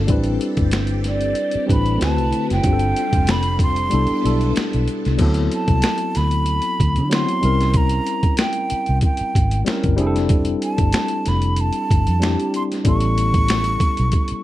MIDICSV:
0, 0, Header, 1, 7, 480
1, 0, Start_track
1, 0, Tempo, 638298
1, 63, Time_signature, 4, 2, 24, 8
1, 10854, End_track
2, 0, Start_track
2, 0, Title_t, "Flute"
2, 0, Program_c, 0, 73
2, 807, Note_on_c, 0, 74, 74
2, 1245, Note_off_c, 0, 74, 0
2, 1289, Note_on_c, 0, 83, 84
2, 1500, Note_off_c, 0, 83, 0
2, 1529, Note_on_c, 0, 81, 86
2, 1861, Note_off_c, 0, 81, 0
2, 1896, Note_on_c, 0, 79, 97
2, 2487, Note_on_c, 0, 83, 89
2, 2498, Note_off_c, 0, 79, 0
2, 2715, Note_off_c, 0, 83, 0
2, 2727, Note_on_c, 0, 84, 95
2, 3405, Note_off_c, 0, 84, 0
2, 4167, Note_on_c, 0, 81, 93
2, 4640, Note_on_c, 0, 83, 90
2, 4651, Note_off_c, 0, 81, 0
2, 5352, Note_off_c, 0, 83, 0
2, 5362, Note_on_c, 0, 84, 100
2, 5842, Note_on_c, 0, 82, 97
2, 5854, Note_off_c, 0, 84, 0
2, 6313, Note_off_c, 0, 82, 0
2, 6318, Note_on_c, 0, 79, 80
2, 6761, Note_off_c, 0, 79, 0
2, 6799, Note_on_c, 0, 79, 74
2, 7241, Note_off_c, 0, 79, 0
2, 8000, Note_on_c, 0, 81, 85
2, 8485, Note_on_c, 0, 83, 77
2, 8497, Note_off_c, 0, 81, 0
2, 8728, Note_on_c, 0, 81, 82
2, 8740, Note_off_c, 0, 83, 0
2, 9436, Note_off_c, 0, 81, 0
2, 9446, Note_on_c, 0, 84, 89
2, 9497, Note_off_c, 0, 84, 0
2, 9687, Note_on_c, 0, 85, 110
2, 10854, Note_off_c, 0, 85, 0
2, 10854, End_track
3, 0, Start_track
3, 0, Title_t, "String machine"
3, 0, Program_c, 1, 50
3, 0, Note_on_c, 1, 69, 72
3, 59, Note_on_c, 1, 67, 80
3, 61, Note_on_c, 1, 60, 68
3, 1471, Note_off_c, 1, 69, 0
3, 1487, Note_off_c, 1, 67, 0
3, 1504, Note_on_c, 1, 50, 67
3, 1504, Note_on_c, 1, 66, 66
3, 1505, Note_on_c, 1, 71, 69
3, 1506, Note_on_c, 1, 64, 62
3, 1963, Note_off_c, 1, 60, 0
3, 1979, Note_off_c, 1, 50, 0
3, 1979, Note_off_c, 1, 66, 0
3, 1980, Note_off_c, 1, 64, 0
3, 1980, Note_off_c, 1, 71, 0
3, 1984, Note_on_c, 1, 65, 77
3, 1985, Note_on_c, 1, 55, 71
3, 1985, Note_on_c, 1, 60, 62
3, 2934, Note_off_c, 1, 65, 0
3, 2935, Note_off_c, 1, 55, 0
3, 2935, Note_off_c, 1, 60, 0
3, 2941, Note_on_c, 1, 47, 69
3, 2941, Note_on_c, 1, 62, 62
3, 2941, Note_on_c, 1, 64, 62
3, 2941, Note_on_c, 1, 69, 78
3, 2942, Note_on_c, 1, 59, 61
3, 3893, Note_off_c, 1, 47, 0
3, 3893, Note_off_c, 1, 59, 0
3, 3893, Note_off_c, 1, 62, 0
3, 3893, Note_off_c, 1, 64, 0
3, 3893, Note_off_c, 1, 69, 0
3, 10854, End_track
4, 0, Start_track
4, 0, Title_t, "Tine electric piano"
4, 0, Program_c, 2, 4
4, 0, Control_c, 2, 64, 127
4, 0, Note_on_c, 2, 58, 73
4, 0, Note_on_c, 2, 62, 72
4, 0, Note_on_c, 2, 69, 88
4, 54, Note_on_c, 2, 55, 82
4, 62, Note_on_c, 2, 60, 72
4, 70, Note_off_c, 2, 62, 0
4, 70, Note_on_c, 2, 62, 69
4, 71, Control_c, 2, 64, 0
4, 76, Note_off_c, 2, 58, 0
4, 76, Note_off_c, 2, 69, 0
4, 79, Note_on_c, 2, 64, 73
4, 88, Note_on_c, 2, 71, 83
4, 202, Control_c, 2, 64, 127
4, 903, Note_off_c, 2, 55, 0
4, 907, Note_off_c, 2, 60, 0
4, 911, Note_off_c, 2, 62, 0
4, 916, Note_off_c, 2, 64, 0
4, 920, Note_off_c, 2, 71, 0
4, 1250, Note_on_c, 2, 55, 70
4, 1257, Note_on_c, 2, 60, 61
4, 1265, Note_on_c, 2, 62, 61
4, 1273, Note_on_c, 2, 64, 62
4, 1280, Note_on_c, 2, 71, 75
4, 1488, Note_on_c, 2, 57, 68
4, 1489, Note_off_c, 2, 60, 0
4, 1497, Note_off_c, 2, 55, 0
4, 1498, Note_off_c, 2, 64, 0
4, 1498, Note_on_c, 2, 60, 63
4, 1504, Note_off_c, 2, 62, 0
4, 1507, Note_on_c, 2, 64, 68
4, 1512, Note_off_c, 2, 71, 0
4, 1513, Control_c, 2, 64, 0
4, 1514, Note_on_c, 2, 66, 64
4, 1521, Note_on_c, 2, 71, 78
4, 1661, Control_c, 2, 64, 127
4, 1919, Note_off_c, 2, 57, 0
4, 1923, Note_off_c, 2, 60, 0
4, 1928, Note_off_c, 2, 64, 0
4, 1931, Note_off_c, 2, 66, 0
4, 1935, Note_off_c, 2, 71, 0
4, 1970, Note_on_c, 2, 55, 63
4, 1978, Note_on_c, 2, 60, 61
4, 1985, Note_on_c, 2, 62, 57
4, 1993, Control_c, 2, 64, 0
4, 1994, Note_on_c, 2, 65, 60
4, 2003, Note_on_c, 2, 67, 58
4, 2046, Note_off_c, 2, 67, 0
4, 2050, Note_on_c, 2, 69, 77
4, 2128, Control_c, 2, 64, 127
4, 2821, Note_off_c, 2, 55, 0
4, 2825, Note_off_c, 2, 60, 0
4, 2829, Note_off_c, 2, 62, 0
4, 2833, Note_off_c, 2, 65, 0
4, 2861, Note_off_c, 2, 69, 0
4, 2932, Note_on_c, 2, 55, 66
4, 2938, Note_on_c, 2, 59, 63
4, 2947, Note_on_c, 2, 62, 62
4, 2952, Control_c, 2, 64, 0
4, 2955, Note_on_c, 2, 64, 61
4, 2963, Note_on_c, 2, 69, 71
4, 3077, Control_c, 2, 64, 127
4, 3149, Note_off_c, 2, 55, 0
4, 3152, Note_off_c, 2, 59, 0
4, 3157, Note_off_c, 2, 62, 0
4, 3161, Note_off_c, 2, 64, 0
4, 3165, Note_off_c, 2, 69, 0
4, 3176, Note_on_c, 2, 55, 63
4, 3183, Note_on_c, 2, 59, 60
4, 3190, Note_on_c, 2, 62, 56
4, 3200, Note_on_c, 2, 64, 58
4, 3206, Note_on_c, 2, 69, 73
4, 3814, Note_off_c, 2, 55, 0
4, 3817, Note_off_c, 2, 59, 0
4, 3821, Note_off_c, 2, 62, 0
4, 3826, Note_off_c, 2, 64, 0
4, 3829, Note_off_c, 2, 69, 0
4, 3893, Note_on_c, 2, 54, 78
4, 3900, Note_on_c, 2, 59, 70
4, 3909, Note_on_c, 2, 60, 72
4, 3913, Control_c, 2, 64, 0
4, 3916, Note_on_c, 2, 64, 74
4, 3925, Note_on_c, 2, 69, 85
4, 4064, Control_c, 2, 64, 127
4, 4743, Note_off_c, 2, 54, 0
4, 4746, Note_off_c, 2, 59, 0
4, 4751, Note_off_c, 2, 60, 0
4, 4754, Note_off_c, 2, 64, 0
4, 4759, Note_off_c, 2, 69, 0
4, 5333, Note_on_c, 2, 54, 68
4, 5340, Note_on_c, 2, 59, 60
4, 5347, Note_on_c, 2, 60, 65
4, 5355, Note_on_c, 2, 64, 63
4, 5363, Note_on_c, 2, 66, 76
4, 5568, Note_off_c, 2, 60, 0
4, 5569, Note_on_c, 2, 55, 71
4, 5578, Note_off_c, 2, 54, 0
4, 5578, Note_on_c, 2, 60, 65
4, 5582, Note_off_c, 2, 59, 0
4, 5584, Note_off_c, 2, 64, 0
4, 5584, Note_on_c, 2, 61, 64
4, 5593, Note_off_c, 2, 66, 0
4, 5593, Note_on_c, 2, 64, 66
4, 5594, Control_c, 2, 64, 0
4, 5602, Note_on_c, 2, 70, 80
4, 5739, Control_c, 2, 64, 127
4, 6421, Note_off_c, 2, 55, 0
4, 6425, Note_off_c, 2, 60, 0
4, 6428, Note_off_c, 2, 61, 0
4, 6433, Note_off_c, 2, 64, 0
4, 6437, Note_off_c, 2, 70, 0
4, 7253, Note_on_c, 2, 55, 67
4, 7261, Note_on_c, 2, 60, 62
4, 7270, Note_on_c, 2, 61, 64
4, 7278, Note_on_c, 2, 64, 65
4, 7286, Note_on_c, 2, 70, 76
4, 7483, Note_off_c, 2, 55, 0
4, 7490, Note_off_c, 2, 60, 0
4, 7492, Note_on_c, 2, 55, 85
4, 7499, Note_on_c, 2, 60, 82
4, 7506, Note_off_c, 2, 64, 0
4, 7507, Note_off_c, 2, 61, 0
4, 7508, Note_on_c, 2, 62, 80
4, 7511, Control_c, 2, 64, 0
4, 7515, Note_off_c, 2, 70, 0
4, 7515, Note_on_c, 2, 64, 84
4, 7525, Note_on_c, 2, 68, 75
4, 7567, Note_off_c, 2, 68, 0
4, 7570, Note_on_c, 2, 69, 99
4, 7655, Control_c, 2, 64, 127
4, 8342, Note_off_c, 2, 55, 0
4, 8346, Note_off_c, 2, 60, 0
4, 8350, Note_off_c, 2, 62, 0
4, 8354, Note_off_c, 2, 64, 0
4, 8381, Note_off_c, 2, 69, 0
4, 9173, Note_on_c, 2, 55, 66
4, 9179, Note_on_c, 2, 60, 63
4, 9190, Note_on_c, 2, 62, 66
4, 9195, Note_on_c, 2, 64, 64
4, 9205, Note_on_c, 2, 67, 79
4, 9601, Note_off_c, 2, 55, 0
4, 9604, Note_off_c, 2, 60, 0
4, 9609, Note_off_c, 2, 62, 0
4, 9612, Note_off_c, 2, 64, 0
4, 9617, Note_off_c, 2, 67, 0
4, 9655, Note_on_c, 2, 55, 70
4, 9663, Note_on_c, 2, 59, 66
4, 9670, Note_on_c, 2, 61, 60
4, 9673, Control_c, 2, 64, 0
4, 9679, Note_on_c, 2, 64, 65
4, 9688, Note_on_c, 2, 69, 71
4, 9796, Control_c, 2, 64, 127
4, 10504, Note_off_c, 2, 55, 0
4, 10508, Note_off_c, 2, 59, 0
4, 10511, Note_off_c, 2, 61, 0
4, 10516, Note_off_c, 2, 64, 0
4, 10520, Note_off_c, 2, 69, 0
4, 10854, End_track
5, 0, Start_track
5, 0, Title_t, "Fingered electric bass"
5, 0, Program_c, 3, 33
5, 72, Note_on_c, 3, 33, 104
5, 277, Note_off_c, 3, 33, 0
5, 437, Note_on_c, 3, 31, 75
5, 996, Note_off_c, 3, 31, 0
5, 1281, Note_on_c, 3, 33, 73
5, 1483, Note_off_c, 3, 33, 0
5, 1519, Note_on_c, 3, 38, 91
5, 1647, Note_off_c, 3, 38, 0
5, 1647, Note_on_c, 3, 36, 79
5, 1737, Note_off_c, 3, 36, 0
5, 1887, Note_on_c, 3, 30, 80
5, 1977, Note_off_c, 3, 30, 0
5, 1990, Note_on_c, 3, 31, 93
5, 2196, Note_off_c, 3, 31, 0
5, 2358, Note_on_c, 3, 29, 77
5, 2916, Note_off_c, 3, 29, 0
5, 2957, Note_on_c, 3, 36, 89
5, 3064, Note_off_c, 3, 36, 0
5, 3196, Note_on_c, 3, 35, 77
5, 3400, Note_off_c, 3, 35, 0
5, 3567, Note_on_c, 3, 35, 75
5, 3657, Note_off_c, 3, 35, 0
5, 3807, Note_on_c, 3, 36, 73
5, 3897, Note_off_c, 3, 36, 0
5, 3910, Note_on_c, 3, 38, 97
5, 4116, Note_off_c, 3, 38, 0
5, 4277, Note_on_c, 3, 36, 80
5, 4372, Note_off_c, 3, 36, 0
5, 4638, Note_on_c, 3, 38, 70
5, 4953, Note_off_c, 3, 38, 0
5, 5118, Note_on_c, 3, 38, 86
5, 5243, Note_on_c, 3, 50, 78
5, 5255, Note_off_c, 3, 38, 0
5, 5448, Note_off_c, 3, 50, 0
5, 5592, Note_on_c, 3, 36, 93
5, 6006, Note_off_c, 3, 36, 0
5, 6685, Note_on_c, 3, 36, 71
5, 6776, Note_off_c, 3, 36, 0
5, 7039, Note_on_c, 3, 32, 78
5, 7242, Note_off_c, 3, 32, 0
5, 7406, Note_on_c, 3, 31, 81
5, 7511, Note_off_c, 3, 31, 0
5, 7511, Note_on_c, 3, 29, 99
5, 7926, Note_off_c, 3, 29, 0
5, 8115, Note_on_c, 3, 31, 82
5, 8210, Note_off_c, 3, 31, 0
5, 8477, Note_on_c, 3, 29, 83
5, 8793, Note_off_c, 3, 29, 0
5, 8959, Note_on_c, 3, 31, 82
5, 9065, Note_off_c, 3, 31, 0
5, 9084, Note_on_c, 3, 41, 92
5, 9288, Note_off_c, 3, 41, 0
5, 9670, Note_on_c, 3, 33, 109
5, 10356, Note_off_c, 3, 33, 0
5, 10524, Note_on_c, 3, 35, 78
5, 10616, Note_off_c, 3, 35, 0
5, 10854, End_track
6, 0, Start_track
6, 0, Title_t, "Muted fingered electric bass strokes"
6, 1168, Note_on_c, 9, 29, 40
6, 1243, Note_off_c, 9, 29, 0
6, 6555, Note_on_c, 9, 29, 43
6, 6631, Note_off_c, 9, 29, 0
6, 6924, Note_on_c, 9, 29, 43
6, 7000, Note_off_c, 9, 29, 0
6, 10386, Note_on_c, 9, 29, 44
6, 10461, Note_off_c, 9, 29, 0
6, 10766, Note_on_c, 9, 29, 44
6, 10841, Note_off_c, 9, 29, 0
6, 10854, End_track
7, 0, Start_track
7, 0, Title_t, "Drums"
7, 61, Note_on_c, 9, 42, 71
7, 65, Note_on_c, 9, 36, 90
7, 136, Note_off_c, 9, 42, 0
7, 140, Note_off_c, 9, 36, 0
7, 177, Note_on_c, 9, 42, 47
7, 252, Note_off_c, 9, 42, 0
7, 307, Note_on_c, 9, 42, 59
7, 382, Note_off_c, 9, 42, 0
7, 428, Note_on_c, 9, 42, 43
7, 430, Note_on_c, 9, 36, 88
7, 503, Note_off_c, 9, 42, 0
7, 506, Note_off_c, 9, 36, 0
7, 537, Note_on_c, 9, 42, 83
7, 549, Note_on_c, 9, 26, 80
7, 550, Note_on_c, 9, 38, 102
7, 612, Note_off_c, 9, 42, 0
7, 624, Note_off_c, 9, 26, 0
7, 625, Note_off_c, 9, 38, 0
7, 654, Note_on_c, 9, 42, 45
7, 729, Note_off_c, 9, 42, 0
7, 783, Note_on_c, 9, 42, 62
7, 790, Note_on_c, 9, 38, 32
7, 858, Note_off_c, 9, 42, 0
7, 865, Note_off_c, 9, 38, 0
7, 907, Note_on_c, 9, 42, 37
7, 982, Note_off_c, 9, 42, 0
7, 1016, Note_on_c, 9, 42, 60
7, 1092, Note_off_c, 9, 42, 0
7, 1139, Note_on_c, 9, 42, 38
7, 1214, Note_off_c, 9, 42, 0
7, 1274, Note_on_c, 9, 36, 85
7, 1281, Note_on_c, 9, 42, 60
7, 1349, Note_off_c, 9, 36, 0
7, 1356, Note_off_c, 9, 42, 0
7, 1396, Note_on_c, 9, 42, 42
7, 1471, Note_off_c, 9, 42, 0
7, 1511, Note_on_c, 9, 42, 65
7, 1521, Note_on_c, 9, 26, 79
7, 1522, Note_on_c, 9, 38, 101
7, 1586, Note_off_c, 9, 42, 0
7, 1596, Note_off_c, 9, 26, 0
7, 1598, Note_off_c, 9, 38, 0
7, 1641, Note_on_c, 9, 42, 35
7, 1716, Note_off_c, 9, 42, 0
7, 1748, Note_on_c, 9, 42, 57
7, 1824, Note_off_c, 9, 42, 0
7, 1883, Note_on_c, 9, 42, 39
7, 1891, Note_on_c, 9, 38, 32
7, 1958, Note_off_c, 9, 42, 0
7, 1966, Note_off_c, 9, 38, 0
7, 1982, Note_on_c, 9, 42, 72
7, 1984, Note_on_c, 9, 36, 92
7, 2057, Note_off_c, 9, 42, 0
7, 2060, Note_off_c, 9, 36, 0
7, 2101, Note_on_c, 9, 42, 49
7, 2176, Note_off_c, 9, 42, 0
7, 2229, Note_on_c, 9, 42, 64
7, 2305, Note_off_c, 9, 42, 0
7, 2351, Note_on_c, 9, 36, 85
7, 2352, Note_on_c, 9, 42, 41
7, 2426, Note_off_c, 9, 36, 0
7, 2427, Note_off_c, 9, 42, 0
7, 2459, Note_on_c, 9, 42, 85
7, 2471, Note_on_c, 9, 26, 75
7, 2472, Note_on_c, 9, 38, 106
7, 2535, Note_off_c, 9, 42, 0
7, 2546, Note_off_c, 9, 26, 0
7, 2548, Note_off_c, 9, 38, 0
7, 2577, Note_on_c, 9, 42, 40
7, 2652, Note_off_c, 9, 42, 0
7, 2700, Note_on_c, 9, 36, 86
7, 2706, Note_on_c, 9, 42, 62
7, 2775, Note_off_c, 9, 36, 0
7, 2781, Note_off_c, 9, 42, 0
7, 2829, Note_on_c, 9, 42, 37
7, 2905, Note_off_c, 9, 42, 0
7, 2939, Note_on_c, 9, 42, 65
7, 3014, Note_off_c, 9, 42, 0
7, 3059, Note_on_c, 9, 42, 38
7, 3134, Note_off_c, 9, 42, 0
7, 3200, Note_on_c, 9, 42, 60
7, 3275, Note_off_c, 9, 42, 0
7, 3315, Note_on_c, 9, 42, 40
7, 3390, Note_off_c, 9, 42, 0
7, 3428, Note_on_c, 9, 42, 65
7, 3438, Note_on_c, 9, 26, 86
7, 3439, Note_on_c, 9, 38, 105
7, 3503, Note_off_c, 9, 42, 0
7, 3513, Note_off_c, 9, 26, 0
7, 3514, Note_off_c, 9, 38, 0
7, 3559, Note_on_c, 9, 42, 35
7, 3635, Note_off_c, 9, 42, 0
7, 3667, Note_on_c, 9, 42, 58
7, 3742, Note_off_c, 9, 42, 0
7, 3799, Note_on_c, 9, 42, 39
7, 3807, Note_on_c, 9, 38, 30
7, 3874, Note_off_c, 9, 42, 0
7, 3882, Note_off_c, 9, 38, 0
7, 3900, Note_on_c, 9, 42, 74
7, 3902, Note_on_c, 9, 49, 81
7, 3903, Note_on_c, 9, 36, 86
7, 3975, Note_off_c, 9, 42, 0
7, 3977, Note_off_c, 9, 49, 0
7, 3979, Note_off_c, 9, 36, 0
7, 4018, Note_on_c, 9, 42, 49
7, 4093, Note_off_c, 9, 42, 0
7, 4147, Note_on_c, 9, 42, 62
7, 4222, Note_off_c, 9, 42, 0
7, 4269, Note_on_c, 9, 42, 43
7, 4270, Note_on_c, 9, 36, 85
7, 4345, Note_off_c, 9, 36, 0
7, 4345, Note_off_c, 9, 42, 0
7, 4377, Note_on_c, 9, 42, 83
7, 4389, Note_on_c, 9, 26, 80
7, 4390, Note_on_c, 9, 38, 97
7, 4452, Note_off_c, 9, 42, 0
7, 4464, Note_off_c, 9, 26, 0
7, 4465, Note_off_c, 9, 38, 0
7, 4495, Note_on_c, 9, 42, 43
7, 4570, Note_off_c, 9, 42, 0
7, 4624, Note_on_c, 9, 42, 64
7, 4630, Note_on_c, 9, 38, 33
7, 4699, Note_off_c, 9, 42, 0
7, 4706, Note_off_c, 9, 38, 0
7, 4746, Note_on_c, 9, 42, 37
7, 4821, Note_off_c, 9, 42, 0
7, 4856, Note_on_c, 9, 42, 59
7, 4932, Note_off_c, 9, 42, 0
7, 4977, Note_on_c, 9, 42, 38
7, 5052, Note_off_c, 9, 42, 0
7, 5113, Note_on_c, 9, 36, 81
7, 5118, Note_on_c, 9, 42, 63
7, 5188, Note_off_c, 9, 36, 0
7, 5193, Note_off_c, 9, 42, 0
7, 5232, Note_on_c, 9, 42, 44
7, 5308, Note_off_c, 9, 42, 0
7, 5348, Note_on_c, 9, 42, 68
7, 5358, Note_on_c, 9, 26, 88
7, 5359, Note_on_c, 9, 38, 102
7, 5423, Note_off_c, 9, 42, 0
7, 5433, Note_off_c, 9, 26, 0
7, 5434, Note_off_c, 9, 38, 0
7, 5479, Note_on_c, 9, 42, 36
7, 5554, Note_off_c, 9, 42, 0
7, 5586, Note_on_c, 9, 42, 60
7, 5661, Note_off_c, 9, 42, 0
7, 5719, Note_on_c, 9, 42, 43
7, 5727, Note_on_c, 9, 38, 32
7, 5794, Note_off_c, 9, 42, 0
7, 5802, Note_off_c, 9, 38, 0
7, 5818, Note_on_c, 9, 42, 74
7, 5823, Note_on_c, 9, 36, 90
7, 5893, Note_off_c, 9, 42, 0
7, 5898, Note_off_c, 9, 36, 0
7, 5936, Note_on_c, 9, 42, 50
7, 6011, Note_off_c, 9, 42, 0
7, 6065, Note_on_c, 9, 42, 60
7, 6140, Note_off_c, 9, 42, 0
7, 6188, Note_on_c, 9, 42, 44
7, 6189, Note_on_c, 9, 36, 88
7, 6263, Note_off_c, 9, 42, 0
7, 6264, Note_off_c, 9, 36, 0
7, 6295, Note_on_c, 9, 42, 86
7, 6306, Note_on_c, 9, 26, 82
7, 6308, Note_on_c, 9, 38, 98
7, 6370, Note_off_c, 9, 42, 0
7, 6382, Note_off_c, 9, 26, 0
7, 6383, Note_off_c, 9, 38, 0
7, 6412, Note_on_c, 9, 42, 43
7, 6487, Note_off_c, 9, 42, 0
7, 6541, Note_on_c, 9, 42, 62
7, 6617, Note_off_c, 9, 42, 0
7, 6664, Note_on_c, 9, 42, 38
7, 6740, Note_off_c, 9, 42, 0
7, 6776, Note_on_c, 9, 42, 64
7, 6786, Note_on_c, 9, 36, 81
7, 6852, Note_off_c, 9, 42, 0
7, 6861, Note_off_c, 9, 36, 0
7, 6897, Note_on_c, 9, 42, 40
7, 6973, Note_off_c, 9, 42, 0
7, 7033, Note_on_c, 9, 36, 82
7, 7039, Note_on_c, 9, 42, 67
7, 7108, Note_off_c, 9, 36, 0
7, 7114, Note_off_c, 9, 42, 0
7, 7154, Note_on_c, 9, 42, 42
7, 7229, Note_off_c, 9, 42, 0
7, 7266, Note_on_c, 9, 42, 67
7, 7276, Note_on_c, 9, 26, 86
7, 7278, Note_on_c, 9, 38, 106
7, 7342, Note_off_c, 9, 42, 0
7, 7352, Note_off_c, 9, 26, 0
7, 7353, Note_off_c, 9, 38, 0
7, 7396, Note_on_c, 9, 42, 36
7, 7399, Note_on_c, 9, 36, 88
7, 7471, Note_off_c, 9, 42, 0
7, 7474, Note_off_c, 9, 36, 0
7, 7504, Note_on_c, 9, 42, 60
7, 7579, Note_off_c, 9, 42, 0
7, 7639, Note_on_c, 9, 42, 42
7, 7646, Note_on_c, 9, 38, 31
7, 7714, Note_off_c, 9, 42, 0
7, 7722, Note_off_c, 9, 38, 0
7, 7739, Note_on_c, 9, 42, 76
7, 7743, Note_on_c, 9, 36, 98
7, 7814, Note_off_c, 9, 42, 0
7, 7818, Note_off_c, 9, 36, 0
7, 7857, Note_on_c, 9, 42, 52
7, 7932, Note_off_c, 9, 42, 0
7, 7986, Note_on_c, 9, 42, 62
7, 8061, Note_off_c, 9, 42, 0
7, 8107, Note_on_c, 9, 42, 40
7, 8109, Note_on_c, 9, 36, 86
7, 8183, Note_off_c, 9, 42, 0
7, 8184, Note_off_c, 9, 36, 0
7, 8216, Note_on_c, 9, 42, 88
7, 8227, Note_on_c, 9, 26, 88
7, 8229, Note_on_c, 9, 38, 103
7, 8291, Note_off_c, 9, 42, 0
7, 8303, Note_off_c, 9, 26, 0
7, 8304, Note_off_c, 9, 38, 0
7, 8335, Note_on_c, 9, 42, 43
7, 8410, Note_off_c, 9, 42, 0
7, 8464, Note_on_c, 9, 42, 65
7, 8471, Note_on_c, 9, 38, 34
7, 8539, Note_off_c, 9, 42, 0
7, 8546, Note_off_c, 9, 38, 0
7, 8586, Note_on_c, 9, 42, 37
7, 8661, Note_off_c, 9, 42, 0
7, 8696, Note_on_c, 9, 42, 66
7, 8772, Note_off_c, 9, 42, 0
7, 8818, Note_on_c, 9, 42, 39
7, 8893, Note_off_c, 9, 42, 0
7, 8953, Note_on_c, 9, 36, 84
7, 8958, Note_on_c, 9, 42, 62
7, 9028, Note_off_c, 9, 36, 0
7, 9034, Note_off_c, 9, 42, 0
7, 9075, Note_on_c, 9, 42, 44
7, 9150, Note_off_c, 9, 42, 0
7, 9189, Note_on_c, 9, 42, 67
7, 9199, Note_on_c, 9, 26, 86
7, 9200, Note_on_c, 9, 38, 104
7, 9264, Note_off_c, 9, 42, 0
7, 9274, Note_off_c, 9, 26, 0
7, 9275, Note_off_c, 9, 38, 0
7, 9322, Note_on_c, 9, 42, 37
7, 9397, Note_off_c, 9, 42, 0
7, 9429, Note_on_c, 9, 42, 62
7, 9504, Note_off_c, 9, 42, 0
7, 9563, Note_on_c, 9, 42, 41
7, 9570, Note_on_c, 9, 38, 32
7, 9638, Note_off_c, 9, 42, 0
7, 9646, Note_off_c, 9, 38, 0
7, 9661, Note_on_c, 9, 42, 77
7, 9664, Note_on_c, 9, 36, 91
7, 9737, Note_off_c, 9, 42, 0
7, 9739, Note_off_c, 9, 36, 0
7, 9780, Note_on_c, 9, 42, 52
7, 9855, Note_off_c, 9, 42, 0
7, 9909, Note_on_c, 9, 42, 68
7, 9984, Note_off_c, 9, 42, 0
7, 10030, Note_on_c, 9, 36, 89
7, 10031, Note_on_c, 9, 42, 43
7, 10106, Note_off_c, 9, 36, 0
7, 10107, Note_off_c, 9, 42, 0
7, 10140, Note_on_c, 9, 42, 87
7, 10152, Note_on_c, 9, 26, 82
7, 10153, Note_on_c, 9, 38, 105
7, 10216, Note_off_c, 9, 42, 0
7, 10227, Note_off_c, 9, 26, 0
7, 10228, Note_off_c, 9, 38, 0
7, 10257, Note_on_c, 9, 42, 46
7, 10333, Note_off_c, 9, 42, 0
7, 10378, Note_on_c, 9, 36, 92
7, 10383, Note_on_c, 9, 42, 67
7, 10453, Note_off_c, 9, 36, 0
7, 10459, Note_off_c, 9, 42, 0
7, 10507, Note_on_c, 9, 42, 39
7, 10582, Note_off_c, 9, 42, 0
7, 10616, Note_on_c, 9, 42, 65
7, 10626, Note_on_c, 9, 36, 78
7, 10691, Note_off_c, 9, 42, 0
7, 10701, Note_off_c, 9, 36, 0
7, 10737, Note_on_c, 9, 42, 41
7, 10813, Note_off_c, 9, 42, 0
7, 10854, End_track
0, 0, End_of_file